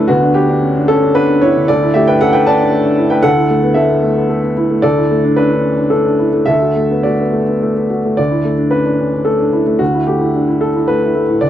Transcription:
0.00 0.09 D2 medium
0.00 0.12 A3 medium
0.00 0.12 C#4 soft
0.00 0.12 D4 medium
0.00 0.11 E4 soft
0.00 0.12 A4 medium
0.00 0.12 B4 loud
0.00 0.11 D5 medium
0.08 1.64 D2 medium
0.08 0.34 B3 medium
0.08 0.35 F#4 medium
0.23 0.44 D4 soft
0.34 0.85 B3 medium
0.34 0.89 G4 medium
0.49 0.71 D4 medium
0.63 0.76 C#4 soft
0.77 0.98 D4 medium
0.88 1.14 C#4 medium
0.88 1.15 A4 medium
1.02 1.14 D4 medium
1.15 1.37 B3 medium
1.15 1.28 D4 medium
1.15 1.42 B4 loud
1.29 1.50 D4 soft
1.41 1.63 B3 soft
1.41 1.67 E4 medium
1.41 1.68 C#5 medium
1.56 1.69 D3 soft
1.68 3.21 D2 medium
1.68 1.93 A4 medium
1.68 1.94 D5 medium
1.83 2.03 E4 soft
1.94 2.16 A3 soft
1.94 2.07 G4 medium
1.94 2.07 E5 medium
2.08 2.29 D4 medium
2.08 2.20 B4 medium
2.08 2.21 G5 medium
2.21 2.34 C#4 soft
2.21 2.33 A4 medium
2.21 2.34 F#5 loud
2.33 2.55 D4 soft
2.33 2.46 B4 medium
2.33 2.46 G5 medium
2.47 2.60 C#4 soft
2.47 3.08 D5 medium
2.47 3.12 A5 medium
2.61 2.81 D4 soft
2.73 2.93 A3 soft
2.85 3.06 D4 soft
2.98 3.19 E4 soft
3.10 3.24 A3 soft
3.10 3.23 B4 medium
3.10 3.24 G5 medium
3.22 4.80 D2 medium
3.22 3.73 A4 medium
3.22 3.76 F#5 loud
3.37 3.58 E4 soft
3.50 3.72 A3 soft
3.63 3.85 B3 medium
3.74 3.90 A3 soft
3.74 4.26 A4 medium
3.74 4.29 E5 medium
3.89 4.11 B3 soft
4.03 4.17 A3 soft
4.17 4.38 B3 soft
4.29 4.51 A3 soft
4.43 4.65 B3 soft
4.57 4.79 E4 soft
4.71 4.84 A3 soft
4.82 6.44 D2 medium
4.82 5.34 A4 medium
4.82 5.37 D5 medium
4.98 5.19 E4 soft
5.11 5.33 A3 soft
5.25 5.36 D4 soft
5.36 5.51 C#4 soft
5.36 5.51 D4 medium
5.36 5.91 B4 medium
5.52 5.73 D4 soft
5.64 5.78 C#4 soft
5.77 5.90 D4 soft
5.90 6.14 A3 soft
5.90 6.05 D4 soft
5.90 6.45 A4 medium
6.06 6.29 D4 soft
6.19 6.42 E4 soft
6.33 6.48 A3 soft
6.46 8.14 D2 soft
6.46 7.01 A4 medium
6.46 7.04 E5 medium
6.62 6.85 F#4 soft
6.76 6.99 A3 soft
6.91 7.14 B3 soft
7.03 7.19 A3 soft
7.03 7.86 F#4 soft
7.03 7.90 D5 medium
7.20 7.42 B3 soft
7.33 7.48 A3 soft
7.49 7.71 B3 soft
7.62 7.85 A3 soft
7.76 7.99 B3 soft
7.90 8.13 F#4 soft
8.05 8.19 A3 soft
8.17 9.77 D2 soft
8.17 8.72 D5 medium
8.31 8.54 E4 soft
8.45 8.67 A3 soft
8.58 8.80 D4 soft
8.71 8.86 C#4 soft
8.71 9.26 B4 medium
8.85 9.08 D4 soft
8.98 9.13 C#4 soft
9.13 9.35 D4 soft
9.25 9.48 A3 soft
9.25 9.80 A4 medium
9.40 9.62 D4 soft
9.53 9.75 E4 soft
9.67 9.81 A3 soft
9.79 11.36 D2 soft
9.79 10.06 F#4 medium
9.95 10.16 E4 soft
10.07 10.29 A3 soft
10.07 10.60 G4 medium
10.21 10.42 E4 soft
10.35 10.48 D4 soft
10.49 10.69 E4 soft
10.61 10.75 D4 soft
10.61 10.88 A4 medium
10.76 10.96 E4 soft
10.88 11.10 A3 soft
10.88 11.41 B4 medium
11.03 11.23 E4 soft
11.15 11.36 A3 soft
11.29 11.41 A2 soft
11.41 11.50 D2 soft
11.41 11.50 D5 medium

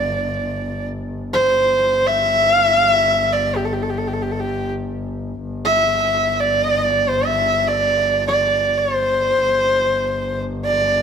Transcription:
0.00 1.46 G1 medium
0.00 0.88 D5 medium
1.34 2.08 C5 medium
1.47 5.42 G1 medium
2.07 2.52 E5 loud
2.52 2.65 F5 loud
2.65 2.78 E5 loud
2.78 2.90 F5 loud
2.90 3.34 E5 loud
3.33 3.58 D5 medium
3.56 3.66 G4 medium
3.65 3.75 A4 medium
3.73 3.84 G4 medium
3.82 3.91 A4 medium
3.90 3.99 G4 medium
3.98 4.09 A4 medium
4.07 4.15 G4 medium
4.13 4.24 A4 medium
4.22 4.33 G4 medium
4.32 4.42 A4 medium
4.40 4.71 G4 medium
5.43 9.42 G1 medium
5.65 6.41 E5 medium
6.40 7.11 D5 medium
7.09 7.27 C5 medium
7.25 7.69 E5 medium
7.67 8.26 D5 medium
8.27 8.80 D5 medium
8.78 10.42 C5 medium
9.42 11.02 G1 medium
10.65 11.02 D5 medium

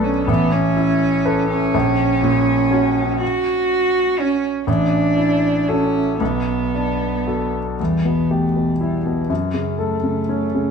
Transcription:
0.00 0.24 B1 medium
0.00 0.27 C#4 medium
0.00 0.30 D4 soft
0.00 0.24 A4 soft
0.00 0.24 B4 soft
0.28 1.70 A1 medium
0.28 0.54 B3 medium
0.52 1.49 C#4 medium
0.77 1.55 E4 soft
1.25 1.70 A4 soft
1.25 1.70 B4 medium
1.50 3.18 C#4 medium
1.74 3.17 A#1 medium
2.22 3.01 A#2 soft
2.71 4.63 C#4 soft
2.71 4.63 F#4 soft
2.71 4.64 C#5 medium
3.21 4.21 F#4 medium
4.20 4.44 C#4 medium
4.67 6.16 A1 medium
4.67 5.70 D4 medium
5.17 5.99 E4 soft
5.68 6.20 C#4 medium
5.68 6.16 F#4 soft
5.68 6.16 A4 soft
6.20 7.75 B1 medium
6.20 7.51 B3 medium
6.75 7.59 D4 soft
7.27 7.75 F#4 soft
7.27 7.76 A4 soft
7.79 9.26 E2 soft
7.79 8.07 G3 soft
8.05 8.45 B2 soft
8.05 8.32 B3 soft
8.30 8.80 A3 soft
8.30 8.71 G4 soft
8.56 8.95 B2 soft
8.80 9.07 G3 soft
8.80 9.20 E4 soft
9.05 9.30 B2 soft
9.05 9.81 F#3 soft
9.29 10.71 F#2 soft
9.54 9.94 C#3 soft
9.78 10.04 A3 soft
9.78 10.19 A4 soft
10.04 10.44 C#3 soft
10.04 10.71 A3 soft
10.29 10.69 C#4 soft
10.55 10.71 C#3 soft

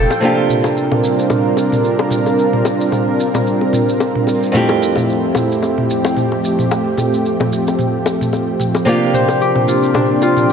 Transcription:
0.00 0.18 F3 medium
0.00 0.18 A3 medium
0.00 0.19 C4 medium
0.00 0.21 G4 loud
0.00 0.95 G4 loud
0.00 0.19 A4 medium
0.00 2.15 A4 loud
0.00 0.31 C5 loud
0.00 1.35 F5 medium
0.00 0.18 G5 medium
0.10 open hi-hat medium
0.10 high bongo medium
0.10 shaker soft
0.20 4.51 C3 medium
0.20 4.50 G3 medium
0.20 4.52 A#3 medium
0.20 8.83 C4 medium
0.20 4.50 D4 medium
0.20 4.52 D4 medium
0.20 4.51 F4 medium
0.20 4.52 F4 medium
0.20 4.50 A#4 medium
0.20 high bongo soft
0.20 shaker soft
0.25 4.53 G4 medium
0.49 mid tom medium
0.49 shaker medium
0.64 high bongo medium
0.64 shaker soft
0.77 shaker soft
0.92 mid tom medium
0.92 high bongo soft
1.04 shaker medium
1.19 shaker soft
1.30 mid tom medium
1.30 high bongo medium
1.30 shaker soft
1.57 high bongo soft
1.57 shaker medium
1.72 mid tom medium
1.72 shaker soft
1.84 shaker soft
1.99 high bongo medium
2.11 mid tom medium
2.11 shaker medium
2.26 high bongo soft
2.26 shaker soft
2.39 shaker soft
2.53 mid tom medium
2.65 high bongo medium
2.65 shaker medium
2.81 shaker soft
2.92 mid tom medium
2.92 high bongo soft
2.92 shaker soft
3.20 shaker medium
3.34 mid tom medium
3.34 high bongo medium
3.34 shaker soft
3.47 shaker soft
3.61 high bongo soft
3.73 mid tom medium
3.73 shaker medium
3.89 shaker soft
4.00 high bongo medium
4.00 shaker soft
4.15 mid tom medium
4.27 high bongo soft
4.27 shaker medium
4.43 shaker soft
4.52 8.83 F2 medium
4.52 10.53 F3 medium
4.52 8.84 A3 medium
4.52 8.83 A3 medium
4.52 6.68 E4 medium
4.52 8.85 E4 medium
4.52 8.82 G4 medium
4.52 mid tom medium
4.52 shaker soft
4.57 8.85 G4 medium
4.69 high bongo medium
4.83 shaker medium
4.95 mid tom medium
4.95 high bongo soft
4.95 shaker soft
5.10 shaker soft
5.35 mid tom medium
5.35 high bongo medium
5.35 shaker medium
5.52 shaker soft
5.63 high bongo soft
5.63 shaker soft
5.78 mid tom medium
5.90 shaker medium
6.05 high bongo medium
6.05 shaker soft
6.17 mid tom medium
6.17 shaker soft
6.32 high bongo soft
6.44 shaker medium
6.59 mid tom medium
6.59 shaker soft
6.71 high bongo medium
6.71 shaker soft
6.98 mid tom medium
6.98 high bongo soft
6.98 shaker medium
7.14 shaker soft
7.26 shaker soft
7.40 mid tom medium
7.40 high bongo medium
7.53 shaker medium
7.68 high bongo soft
7.68 shaker soft
7.79 mid tom medium
7.79 shaker soft
8.06 high bongo medium
8.06 shaker medium
8.21 mid tom medium
8.21 shaker soft
8.33 high bongo soft
8.33 shaker soft
8.60 mid tom medium
8.60 shaker medium
8.75 high bongo medium
8.75 shaker soft
8.85 10.53 C3 medium
8.85 10.53 A#3 medium
8.85 10.53 C4 medium
8.85 10.53 D4 medium
8.85 10.53 F4 medium
8.85 10.53 G4 medium
8.85 9.41 G4 medium
8.85 high bongo soft
8.85 shaker soft
8.89 10.53 G4 medium
9.14 10.53 C5 medium
9.14 mid tom medium
9.14 shaker medium
9.28 high bongo medium
9.28 shaker soft
9.41 10.49 G4 medium
9.41 shaker soft
9.56 mid tom medium
9.56 high bongo soft
9.68 10.22 F4 medium
9.68 shaker medium
9.83 shaker soft
9.94 10.53 D4 medium
9.94 mid tom medium
9.94 high bongo medium
9.94 shaker soft
10.22 10.53 F4 medium
10.22 high bongo soft
10.22 shaker medium
10.37 mid tom medium
10.37 shaker soft
10.50 shaker soft

